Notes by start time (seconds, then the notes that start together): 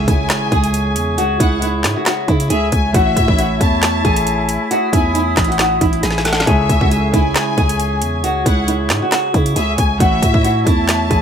Already playing: C#3 G#3 E4 G#4 C#5 E5 C#6, impact
0.08 C#2 E4 G#5, kick, closed hi-hat
0.30 snare, clap, closed hi-hat
0.52 C#2 G#4, kick, closed hi-hat
0.64 closed hi-hat
0.74 closed hi-hat
0.96 E2, closed hi-hat
1.18 C#2 F#4, closed hi-hat
1.40 C#2 E4 F#5, kick, closed hi-hat
1.62 E4, closed hi-hat
1.84 G#2, snare, clap, closed hi-hat
1.96 F#4
2.06 F#4, snare, clap, closed hi-hat
2.28 C#3 E4, kick, closed hi-hat
2.40 closed hi-hat
2.50 C#2 G#4 E5, closed hi-hat
2.72 C#2 G#5, kick, closed hi-hat
2.93 A1 A3 E4 F#4 C#5 E5 C#6, kick, closed hi-hat
3.17 A2, kick, closed hi-hat
3.28 A1 E4, kick
3.39 F#4, closed hi-hat
3.61 E2 E4 A5, kick, closed hi-hat
3.83 snare, clap, closed hi-hat
4.05 A1 G#4, kick, closed hi-hat
4.16 closed hi-hat
4.27 closed hi-hat
4.49 closed hi-hat
4.71 F#4 D#6, closed hi-hat
4.93 E2 E4 G#5, kick, closed hi-hat
5.15 E4, closed hi-hat
5.37 A1, kick, snare, clap, closed hi-hat
5.44 F#4, closed hi-hat
5.52 closed hi-hat
5.59 F#4, snare, clap, closed hi-hat
5.81 A1 E4, kick, closed hi-hat
5.93 closed hi-hat
6.03 A1 G#4, snare, closed hi-hat
6.11 snare
6.18 snare
6.25 A4 F#5, snare, closed hi-hat
6.33 snare
6.40 snare
6.46 C#2 C#3 G#3 E4 G#4 C#5 E5 C#6, kick, closed hi-hat
6.69 C#2, kick, closed hi-hat
6.81 C#2 F#4, kick
6.91 G#4, closed hi-hat
7.14 C#2 E4 G#5, kick, closed hi-hat
7.36 snare, clap, closed hi-hat
7.57 C#2 G#4, kick, closed hi-hat
7.69 closed hi-hat
7.80 closed hi-hat
8.02 E2, closed hi-hat
8.24 C#2 F#4, closed hi-hat
8.46 C#2 E4 F#5, kick, closed hi-hat
8.68 E4, closed hi-hat
8.90 G#2, snare, clap, closed hi-hat
9.02 F#4
9.12 F#4, snare, clap, closed hi-hat
9.34 C#3 E4, kick, closed hi-hat
9.46 closed hi-hat
9.56 C#2 G#4 E5, closed hi-hat
9.78 C#2 G#5, kick, closed hi-hat
9.98 A1 A3 E4 F#4 C#5 E5, kick, closed hi-hat
10.22 A2, kick, closed hi-hat
10.34 E4, kick
10.44 F#4, closed hi-hat
10.67 E2 E4 A5, kick, closed hi-hat
10.89 snare, clap, closed hi-hat
11.10 A1 G#4, kick, closed hi-hat